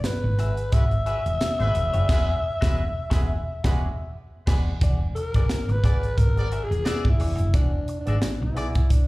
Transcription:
0.04 B4, muted clean electric guitar stroke, muted fingered electric bass stroke, snare, closed hi-hat
0.24 G#1
0.38 F#4 G#4 E5, snare, closed hi-hat
0.57 muted clean electric guitar stroke, closed hi-hat
0.72 G#1 G#3 F#4 B4 E5, kick, closed hi-hat
0.91 muted clean electric guitar stroke, closed hi-hat
1.06 G#3 F#4 G#4 B4 E5, closed hi-hat
1.26 E1, closed hi-hat
1.41 muted clean electric guitar stroke, snare, closed hi-hat
1.59 G#1 G#3 F#4 B4, muted clean electric guitar stroke, closed hi-hat
1.75 E1, closed hi-hat
1.93 F#1 F#4 G#4 D5, closed hi-hat
2.09 E1 G#3 F#4 G#4 B4 E5, kick, snare, crash
2.61 E1 G#3 F#4 G#4 B4 E5, kick, snare
3.10 E1 G#3 F#4 G#4 B4 E5, kick, snare
3.64 E1 G#3 F#4 G#4 B4 D5, kick, snare
4.46 E1 G#3 F#4 G#4 B4 D5, kick, snare, crash
4.81 E1 F#4 G#4 D5, kick, closed hi-hat
5.01 muted clean electric guitar stroke
5.15 A#4, muted clean electric guitar stroke, closed hi-hat
5.34 G1 B3 F#4 G#4 D5, kick, closed hi-hat
5.49 muted clean electric guitar stroke, snare, closed hi-hat
5.68 G#1 B4, muted clean electric guitar stroke, closed hi-hat
5.83 B3 F#4 G#4 D5, kick, snare, closed hi-hat
6.03 muted clean electric guitar stroke, closed hi-hat
6.18 G#1 A#4, kick, closed hi-hat
6.36 B3 G#4 D5, muted clean electric guitar stroke, closed hi-hat
6.52 F#4 G#4 E5, closed hi-hat
6.64 G#4
6.71 E1, muted clean electric guitar stroke, closed hi-hat
6.85 B3 F#4 G#4 D5 E5, snare, closed hi-hat
7.05 G#1, muted clean electric guitar stroke, kick
7.10 E4
7.20 E1 F#4 G#4 D5, open hi-hat
7.38 F#1, muted clean electric guitar stroke, closed hi-hat
7.54 E1 D4 F#4 G#4 D5, kick, closed hi-hat
7.88 muted clean electric guitar stroke, closed hi-hat
8.00 D4
8.06 G#1 B3 F#4 G#4 D5 E5, closed hi-hat
8.22 muted fingered electric bass stroke, muted clean electric guitar stroke, snare, closed hi-hat
8.42 B1 E4, muted clean electric guitar stroke
8.55 B3 F#4 G#4 D5, closed hi-hat
8.75 muted clean electric guitar stroke, kick, closed hi-hat
8.90 D4, kick, closed hi-hat

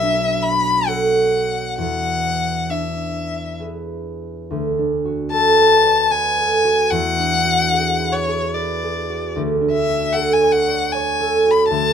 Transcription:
Already playing: B1 A4 E5
0.02 D4
0.42 B5
0.87 A4 C#5 F#5
1.78 E2 F#5
2.70 D4 E5
3.60 G#4 B4
4.50 D2
4.78 D4
5.05 F#4
5.32 A4 A5
5.58 B4
5.84 D5
6.11 B4 G#5
6.38 A4
6.65 F#4
6.90 E2 F#5
7.18 D4
7.45 F#4
7.73 G#4
8.00 B4
8.12 C#5
8.28 G#4
8.54 B4 D5
8.83 G#4
9.09 F#4
9.36 D2
9.61 D4
9.73 E5
9.88 F#4
10.13 A4 F#5
10.33 G#5
10.41 C#5
10.52 F#5
10.68 D5
10.92 C#5 G#5
11.20 A4
11.46 F#4
11.51 B5
11.68 D2 A5

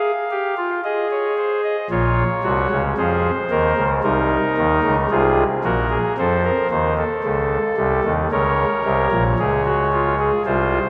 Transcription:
Already playing: G#4 F5
0.31 G4
0.57 F4
0.84 G#4 D#5
1.11 C#5
1.37 C5
1.64 D#5
1.90 A#1 A#2 F4 C#5
2.43 C2 C3 F#4
2.70 C#2 C#3
2.97 F2 F3 G#4 C5
3.50 D#2 D#3 A#4
3.77 C#2 C#3
4.03 C2 C3 D#4 A#4
4.57 D#2 D#3
4.83 C#2 C#3
5.10 C2 C3 F4 G#4
5.64 A#1 A#2 F#4 A#4
5.90 G#4
6.18 F2 F3 A4 C5
6.44 A#4
6.70 D#2 D#3 C5
6.98 A4
7.24 C#2 C#3
7.77 C2 C3
8.04 D#2 D#3
8.32 C#2 C#3 A#4 C#5
8.85 C2 C3
9.12 A#1 A#2
9.39 C#2 C#3 G#4
9.65 F#4
9.92 F4
10.19 G#4
10.46 C2 C3 F4 C5

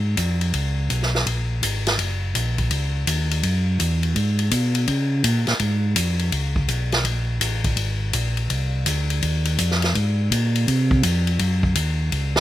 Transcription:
Already playing: G#2
0.17 F2, kick, hi-hat pedal, ride
0.41 ride
0.54 C#2, kick, ride
0.90 B1, kick, hi-hat pedal, ride
1.02 snare
1.15 snare
1.26 A#1, kick, ride
1.62 G#1, kick, hi-hat pedal, ride
1.87 snare, ride
1.99 F#1, kick, ride
2.35 A#1, kick, hi-hat pedal, ride
2.58 kick, ride
2.71 C#2, kick, ride
3.07 D#2, kick, hi-hat pedal, ride
3.31 ride
3.43 F#2, kick, ride
3.79 E2, kick, hi-hat pedal, ride
4.03 ride
4.15 G#2, kick, ride
4.39 ride
4.51 B2, kick, hi-hat pedal, ride
4.75 ride
4.88 C#3, kick, ride
5.24 A#2, kick, hi-hat pedal, ride
5.47 A#2, snare, ride
5.59 G#2, kick, ride
5.96 F2, kick, hi-hat pedal, ride
6.19 ride
6.32 C#2, kick, ride
6.56 kick
6.68 B1, kick, hi-hat pedal, ride
6.92 snare, ride
7.04 A#1, kick, ride
7.40 A1, kick, hi-hat pedal, ride
7.64 kick, ride
7.77 G#1, kick, ride
8.13 A#1, kick, hi-hat pedal, ride
8.37 ride
8.50 C2, kick, ride
8.86 D2, kick, hi-hat pedal, ride
9.10 ride
9.22 D#2, kick, ride
9.45 ride
9.58 F2, kick, hi-hat pedal, ride
9.71 snare
9.82 snare, ride
9.95 G#2, kick, ride
10.31 A#2, kick, hi-hat pedal, ride
10.55 ride
10.67 C3, kick, ride
10.91 kick
11.03 F2, kick, hi-hat pedal, ride
11.27 ride
11.39 F#2, kick, ride
11.63 kick
11.75 D#2, kick, hi-hat pedal, ride
12.12 C#2, kick, ride
12.36 snare

